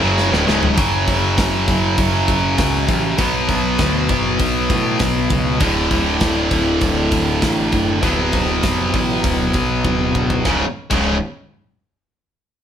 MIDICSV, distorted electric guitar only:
0, 0, Header, 1, 2, 480
1, 0, Start_track
1, 0, Tempo, 604839
1, 616, Time_signature, 4, 2, 24, 8
1, 10025, End_track
2, 0, Start_track
2, 0, Title_t, "Distorted electric guitar"
2, 0, Program_c, 0, 30
2, 6, Note_on_c, 0, 42, 99
2, 13, Note_on_c, 0, 49, 101
2, 15, Note_on_c, 0, 54, 115
2, 244, Note_off_c, 0, 42, 0
2, 247, Note_off_c, 0, 49, 0
2, 248, Note_off_c, 0, 54, 0
2, 253, Note_on_c, 0, 38, 90
2, 253, Note_on_c, 0, 45, 90
2, 360, Note_off_c, 0, 38, 0
2, 363, Note_on_c, 0, 37, 95
2, 367, Note_off_c, 0, 45, 0
2, 370, Note_on_c, 0, 49, 83
2, 371, Note_on_c, 0, 44, 93
2, 600, Note_off_c, 0, 37, 0
2, 603, Note_on_c, 0, 42, 85
2, 605, Note_off_c, 0, 44, 0
2, 605, Note_off_c, 0, 49, 0
2, 616, Note_on_c, 0, 49, 88
2, 621, Note_on_c, 0, 54, 110
2, 2507, Note_off_c, 0, 42, 0
2, 2513, Note_off_c, 0, 49, 0
2, 2523, Note_on_c, 0, 47, 85
2, 2532, Note_off_c, 0, 54, 0
2, 2532, Note_on_c, 0, 54, 101
2, 2539, Note_on_c, 0, 59, 91
2, 4431, Note_off_c, 0, 47, 0
2, 4439, Note_off_c, 0, 59, 0
2, 4444, Note_on_c, 0, 38, 80
2, 4452, Note_off_c, 0, 54, 0
2, 4455, Note_on_c, 0, 45, 94
2, 4464, Note_on_c, 0, 50, 88
2, 6355, Note_off_c, 0, 38, 0
2, 6361, Note_off_c, 0, 45, 0
2, 6365, Note_off_c, 0, 50, 0
2, 6366, Note_on_c, 0, 47, 76
2, 6372, Note_on_c, 0, 54, 103
2, 6382, Note_on_c, 0, 59, 89
2, 8278, Note_off_c, 0, 47, 0
2, 8281, Note_off_c, 0, 54, 0
2, 8286, Note_off_c, 0, 59, 0
2, 8293, Note_on_c, 0, 37, 78
2, 8298, Note_on_c, 0, 44, 89
2, 8303, Note_on_c, 0, 49, 103
2, 8439, Note_off_c, 0, 37, 0
2, 8441, Note_off_c, 0, 44, 0
2, 8443, Note_off_c, 0, 49, 0
2, 8652, Note_on_c, 0, 37, 77
2, 8655, Note_on_c, 0, 44, 77
2, 8663, Note_on_c, 0, 49, 84
2, 8846, Note_off_c, 0, 37, 0
2, 8848, Note_off_c, 0, 44, 0
2, 8852, Note_off_c, 0, 49, 0
2, 10025, End_track
0, 0, End_of_file